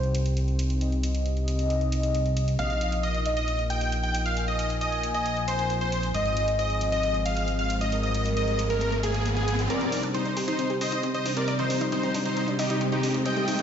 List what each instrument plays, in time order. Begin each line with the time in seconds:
Already playing: analog synth bass C2, analog synth pad C3 C4 D#4 G4, soft synth lead C5
0.03 closed hi-hat
0.15 closed hi-hat
0.26 closed hi-hat
0.37 closed hi-hat
0.48 closed hi-hat
0.59 closed hi-hat
0.70 closed hi-hat
0.81 soft synth lead D#5, closed hi-hat
0.92 closed hi-hat
1.03 closed hi-hat
1.15 closed hi-hat
1.26 closed hi-hat
1.37 closed hi-hat
1.48 closed hi-hat
1.59 closed hi-hat
1.70 closed hi-hat
1.81 closed hi-hat
1.92 closed hi-hat
2.03 closed hi-hat
2.15 closed hi-hat
2.26 closed hi-hat
2.37 closed hi-hat
2.48 closed hi-hat
2.59 analog synth bass A#1, analog synth pad F3 A#3, soft synth lead D#5, supersaw synth F5, closed hi-hat
2.70 closed hi-hat
2.81 closed hi-hat
2.92 closed hi-hat
3.03 supersaw synth D#5, closed hi-hat
3.15 closed hi-hat
3.26 soft synth lead D#5, closed hi-hat
3.37 supersaw synth D#5, closed hi-hat
3.48 closed hi-hat
3.59 closed hi-hat
3.70 supersaw synth G5, closed hi-hat
3.81 closed hi-hat
3.92 closed hi-hat
4.03 supersaw synth G5, closed hi-hat
4.15 closed hi-hat
4.26 supersaw synth F5, closed hi-hat
4.37 soft synth lead G#5, closed hi-hat
4.48 supersaw synth D#5, closed hi-hat
4.59 closed hi-hat
4.70 closed hi-hat
4.81 supersaw synth D#5, closed hi-hat
4.92 closed hi-hat
5.03 closed hi-hat
5.14 supersaw synth D#5, closed hi-hat
5.26 closed hi-hat
5.37 closed hi-hat
5.48 supersaw synth C5, closed hi-hat
5.59 closed hi-hat
5.70 closed hi-hat
5.81 supersaw synth C5, closed hi-hat
5.92 closed hi-hat
6.03 closed hi-hat
6.14 analog synth bass G#1, analog synth pad G#3 C4, supersaw synth D#5, soft synth lead D#5, closed hi-hat, riser
6.26 closed hi-hat
6.37 closed hi-hat
6.48 closed hi-hat
6.59 supersaw synth D#5, closed hi-hat
6.70 closed hi-hat
6.81 soft synth lead D#5, closed hi-hat
6.92 supersaw synth D#5, closed hi-hat
7.03 closed hi-hat
7.14 closed hi-hat
7.26 supersaw synth F5, closed hi-hat
7.37 closed hi-hat
7.48 closed hi-hat
7.59 supersaw synth F5, closed hi-hat
7.70 closed hi-hat
7.81 supersaw synth D#5, closed hi-hat
7.92 soft synth lead A#4, closed hi-hat
8.03 supersaw synth D#5, closed hi-hat
8.14 closed hi-hat
8.26 closed hi-hat
8.37 supersaw synth D#5, closed hi-hat
8.48 closed hi-hat
8.59 closed hi-hat
8.70 supersaw synth A#4, closed hi-hat
8.81 closed hi-hat
8.92 closed hi-hat
9.03 supersaw synth G#4, closed hi-hat
9.14 closed hi-hat
9.26 closed hi-hat
9.37 supersaw synth G#4, closed hi-hat
9.48 closed hi-hat
9.59 closed hi-hat
9.70 analog synth pad C3 G3 C4 D#4 C5, synth arpeggio sound C4, supersaw synth A#4 D5, closed hi-hat, riser
9.81 synth arpeggio sound G4, closed hi-hat
9.92 synth arpeggio sound D#4, open hi-hat
10.03 synth arpeggio sound D4, closed hi-hat
10.14 synth arpeggio sound C4, supersaw synth D#4 C5, closed hi-hat
10.26 synth arpeggio sound D4, closed hi-hat
10.37 synth arpeggio sound G4, open hi-hat
10.48 synth arpeggio sound D#4, supersaw synth D#4 C5, closed hi-hat
10.59 synth arpeggio sound C4, closed hi-hat
10.70 synth arpeggio sound G4, closed hi-hat
10.81 synth arpeggio sound C4, supersaw synth C5 D#5, open hi-hat
10.92 synth arpeggio sound D#4, closed hi-hat
11.03 synth arpeggio sound C4, closed hi-hat
11.14 supersaw synth C5 D#5, closed hi-hat
11.26 synth arpeggio sound D4, open hi-hat
11.37 synth arpeggio sound C4, supersaw synth A#4 D5, closed hi-hat
11.48 synth arpeggio sound D5, closed hi-hat
11.59 synth arpeggio sound D#4, supersaw synth D#4 C5, closed hi-hat
11.70 synth arpeggio sound C4, open hi-hat
11.81 synth arpeggio sound D#4, closed hi-hat
11.92 synth arpeggio sound C4, supersaw synth D#4 C5, closed hi-hat
12.03 synth arpeggio sound C4, closed hi-hat
12.14 synth arpeggio sound D4, open hi-hat
12.26 synth arpeggio sound C4, supersaw synth D#4 C5, closed hi-hat
12.37 synth arpeggio sound C4, closed hi-hat
12.48 synth arpeggio sound D4, closed hi-hat
12.59 supersaw synth D#4 G4, synth arpeggio sound D#5, open hi-hat
12.70 synth arpeggio sound D#4, closed hi-hat
12.81 synth arpeggio sound C4, closed hi-hat
12.92 supersaw synth D#4 G4, synth arpeggio sound C5, closed hi-hat
13.03 synth arpeggio sound D4, open hi-hat
13.14 synth arpeggio sound C4, closed hi-hat
13.26 synth arpeggio sound C4, supersaw synth D#5 G5, closed hi-hat
13.37 synth arpeggio sound G4, closed hi-hat
13.48 synth arpeggio sound D#4, open hi-hat
13.59 synth arpeggio sound D4, closed hi-hat